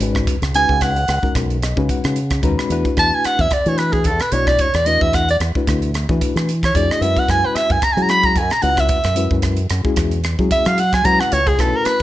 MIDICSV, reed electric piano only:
0, 0, Header, 1, 2, 480
1, 0, Start_track
1, 0, Tempo, 539084
1, 724, Time_signature, 4, 2, 24, 8
1, 10707, End_track
2, 0, Start_track
2, 0, Title_t, "Reed electric piano"
2, 0, Program_c, 0, 4
2, 0, Note_on_c, 0, 56, 82
2, 6, Note_on_c, 0, 61, 68
2, 10, Note_on_c, 0, 63, 71
2, 13, Note_on_c, 0, 66, 74
2, 22, Note_on_c, 0, 71, 90
2, 309, Note_off_c, 0, 56, 0
2, 312, Note_off_c, 0, 61, 0
2, 314, Note_off_c, 0, 63, 0
2, 315, Note_off_c, 0, 66, 0
2, 320, Note_off_c, 0, 71, 0
2, 488, Note_on_c, 0, 61, 68
2, 489, Note_on_c, 0, 56, 74
2, 493, Note_on_c, 0, 63, 68
2, 502, Note_on_c, 0, 66, 64
2, 507, Note_on_c, 0, 71, 84
2, 873, Note_off_c, 0, 56, 0
2, 873, Note_off_c, 0, 61, 0
2, 875, Note_off_c, 0, 63, 0
2, 880, Note_off_c, 0, 66, 0
2, 882, Note_off_c, 0, 71, 0
2, 1087, Note_on_c, 0, 56, 69
2, 1094, Note_on_c, 0, 61, 59
2, 1095, Note_on_c, 0, 63, 59
2, 1097, Note_on_c, 0, 66, 63
2, 1103, Note_on_c, 0, 70, 78
2, 1387, Note_off_c, 0, 56, 0
2, 1390, Note_off_c, 0, 61, 0
2, 1391, Note_off_c, 0, 63, 0
2, 1392, Note_off_c, 0, 66, 0
2, 1395, Note_off_c, 0, 70, 0
2, 1452, Note_on_c, 0, 75, 67
2, 1569, Note_on_c, 0, 56, 83
2, 1580, Note_on_c, 0, 61, 78
2, 1581, Note_on_c, 0, 63, 73
2, 1587, Note_on_c, 0, 66, 77
2, 1590, Note_on_c, 0, 71, 90
2, 1672, Note_off_c, 0, 75, 0
2, 1698, Note_on_c, 0, 78, 81
2, 1939, Note_off_c, 0, 56, 0
2, 1944, Note_off_c, 0, 61, 0
2, 1945, Note_off_c, 0, 63, 0
2, 1948, Note_off_c, 0, 66, 0
2, 1949, Note_off_c, 0, 71, 0
2, 2139, Note_off_c, 0, 78, 0
2, 2155, Note_on_c, 0, 56, 90
2, 2162, Note_on_c, 0, 61, 91
2, 2165, Note_on_c, 0, 63, 85
2, 2170, Note_on_c, 0, 82, 72
2, 2173, Note_on_c, 0, 66, 92
2, 2175, Note_on_c, 0, 71, 107
2, 2292, Note_off_c, 0, 82, 0
2, 2297, Note_on_c, 0, 83, 76
2, 2401, Note_off_c, 0, 56, 0
2, 2404, Note_on_c, 0, 57, 94
2, 2405, Note_off_c, 0, 61, 0
2, 2406, Note_off_c, 0, 63, 0
2, 2410, Note_off_c, 0, 66, 0
2, 2410, Note_on_c, 0, 62, 92
2, 2411, Note_off_c, 0, 71, 0
2, 2415, Note_on_c, 0, 64, 84
2, 2422, Note_on_c, 0, 66, 86
2, 2426, Note_on_c, 0, 71, 107
2, 2622, Note_off_c, 0, 83, 0
2, 3083, Note_off_c, 0, 57, 0
2, 3086, Note_off_c, 0, 62, 0
2, 3089, Note_off_c, 0, 64, 0
2, 3093, Note_off_c, 0, 66, 0
2, 3094, Note_off_c, 0, 71, 0
2, 3258, Note_on_c, 0, 57, 76
2, 3263, Note_on_c, 0, 62, 71
2, 3267, Note_on_c, 0, 64, 70
2, 3272, Note_on_c, 0, 66, 69
2, 3275, Note_on_c, 0, 71, 79
2, 3624, Note_off_c, 0, 57, 0
2, 3627, Note_off_c, 0, 62, 0
2, 3629, Note_off_c, 0, 64, 0
2, 3631, Note_off_c, 0, 66, 0
2, 3633, Note_off_c, 0, 71, 0
2, 3848, Note_on_c, 0, 57, 64
2, 3850, Note_on_c, 0, 62, 59
2, 3851, Note_on_c, 0, 64, 64
2, 3859, Note_on_c, 0, 66, 60
2, 3860, Note_on_c, 0, 74, 78
2, 4155, Note_off_c, 0, 57, 0
2, 4156, Note_off_c, 0, 62, 0
2, 4156, Note_off_c, 0, 64, 0
2, 4161, Note_off_c, 0, 66, 0
2, 4161, Note_off_c, 0, 74, 0
2, 4326, Note_on_c, 0, 57, 69
2, 4331, Note_on_c, 0, 62, 66
2, 4333, Note_on_c, 0, 64, 69
2, 4340, Note_on_c, 0, 66, 69
2, 4341, Note_on_c, 0, 71, 81
2, 4714, Note_off_c, 0, 57, 0
2, 4716, Note_off_c, 0, 62, 0
2, 4717, Note_off_c, 0, 64, 0
2, 4721, Note_off_c, 0, 66, 0
2, 4721, Note_off_c, 0, 71, 0
2, 4945, Note_on_c, 0, 57, 81
2, 4946, Note_on_c, 0, 62, 74
2, 4953, Note_on_c, 0, 64, 78
2, 4959, Note_on_c, 0, 71, 83
2, 4960, Note_on_c, 0, 66, 73
2, 5238, Note_off_c, 0, 57, 0
2, 5238, Note_off_c, 0, 62, 0
2, 5242, Note_off_c, 0, 64, 0
2, 5244, Note_off_c, 0, 71, 0
2, 5245, Note_off_c, 0, 66, 0
2, 5422, Note_on_c, 0, 57, 84
2, 5424, Note_on_c, 0, 62, 73
2, 5428, Note_on_c, 0, 64, 74
2, 5435, Note_on_c, 0, 66, 75
2, 5442, Note_on_c, 0, 71, 93
2, 5786, Note_off_c, 0, 57, 0
2, 5788, Note_off_c, 0, 62, 0
2, 5790, Note_off_c, 0, 64, 0
2, 5793, Note_off_c, 0, 66, 0
2, 5797, Note_off_c, 0, 71, 0
2, 6001, Note_on_c, 0, 57, 80
2, 6006, Note_on_c, 0, 62, 70
2, 6014, Note_on_c, 0, 64, 75
2, 6018, Note_on_c, 0, 68, 86
2, 6019, Note_on_c, 0, 66, 70
2, 6245, Note_off_c, 0, 57, 0
2, 6248, Note_off_c, 0, 62, 0
2, 6251, Note_off_c, 0, 64, 0
2, 6253, Note_off_c, 0, 68, 0
2, 6254, Note_off_c, 0, 66, 0
2, 6255, Note_on_c, 0, 61, 66
2, 6256, Note_on_c, 0, 56, 76
2, 6261, Note_on_c, 0, 64, 69
2, 6267, Note_on_c, 0, 66, 76
2, 6272, Note_on_c, 0, 71, 83
2, 6929, Note_off_c, 0, 56, 0
2, 6929, Note_off_c, 0, 61, 0
2, 6932, Note_off_c, 0, 64, 0
2, 6934, Note_off_c, 0, 66, 0
2, 6937, Note_off_c, 0, 71, 0
2, 7091, Note_on_c, 0, 56, 72
2, 7093, Note_on_c, 0, 61, 65
2, 7104, Note_on_c, 0, 64, 67
2, 7105, Note_on_c, 0, 66, 67
2, 7112, Note_on_c, 0, 68, 79
2, 7460, Note_off_c, 0, 56, 0
2, 7462, Note_off_c, 0, 61, 0
2, 7467, Note_off_c, 0, 64, 0
2, 7467, Note_off_c, 0, 66, 0
2, 7471, Note_off_c, 0, 68, 0
2, 7674, Note_on_c, 0, 56, 71
2, 7678, Note_on_c, 0, 61, 65
2, 7685, Note_on_c, 0, 64, 62
2, 7689, Note_on_c, 0, 66, 63
2, 7693, Note_on_c, 0, 71, 72
2, 7988, Note_off_c, 0, 56, 0
2, 7989, Note_off_c, 0, 61, 0
2, 7993, Note_off_c, 0, 64, 0
2, 7995, Note_off_c, 0, 66, 0
2, 7997, Note_off_c, 0, 71, 0
2, 8149, Note_on_c, 0, 56, 75
2, 8151, Note_on_c, 0, 61, 70
2, 8157, Note_on_c, 0, 64, 70
2, 8161, Note_on_c, 0, 66, 71
2, 8166, Note_on_c, 0, 71, 82
2, 8544, Note_off_c, 0, 56, 0
2, 8545, Note_off_c, 0, 61, 0
2, 8548, Note_off_c, 0, 64, 0
2, 8550, Note_off_c, 0, 66, 0
2, 8553, Note_off_c, 0, 71, 0
2, 8758, Note_on_c, 0, 56, 81
2, 8764, Note_on_c, 0, 61, 82
2, 8771, Note_on_c, 0, 68, 90
2, 8772, Note_on_c, 0, 64, 79
2, 8773, Note_on_c, 0, 66, 79
2, 9062, Note_off_c, 0, 56, 0
2, 9065, Note_off_c, 0, 61, 0
2, 9069, Note_off_c, 0, 64, 0
2, 9069, Note_off_c, 0, 68, 0
2, 9070, Note_off_c, 0, 66, 0
2, 9244, Note_on_c, 0, 61, 65
2, 9246, Note_on_c, 0, 56, 73
2, 9253, Note_on_c, 0, 64, 68
2, 9256, Note_on_c, 0, 66, 63
2, 9260, Note_on_c, 0, 68, 85
2, 9616, Note_off_c, 0, 56, 0
2, 9616, Note_off_c, 0, 61, 0
2, 9620, Note_off_c, 0, 64, 0
2, 9622, Note_off_c, 0, 66, 0
2, 9624, Note_off_c, 0, 68, 0
2, 9828, Note_on_c, 0, 56, 88
2, 9833, Note_on_c, 0, 61, 79
2, 9837, Note_on_c, 0, 64, 76
2, 9840, Note_on_c, 0, 66, 73
2, 9847, Note_on_c, 0, 71, 91
2, 10143, Note_off_c, 0, 56, 0
2, 10146, Note_off_c, 0, 61, 0
2, 10147, Note_off_c, 0, 64, 0
2, 10149, Note_off_c, 0, 66, 0
2, 10152, Note_off_c, 0, 71, 0
2, 10314, Note_on_c, 0, 61, 73
2, 10315, Note_on_c, 0, 57, 87
2, 10317, Note_on_c, 0, 64, 78
2, 10321, Note_on_c, 0, 66, 75
2, 10323, Note_on_c, 0, 71, 101
2, 10705, Note_off_c, 0, 57, 0
2, 10705, Note_off_c, 0, 61, 0
2, 10706, Note_off_c, 0, 64, 0
2, 10707, Note_off_c, 0, 66, 0
2, 10707, Note_off_c, 0, 71, 0
2, 10707, End_track
0, 0, End_of_file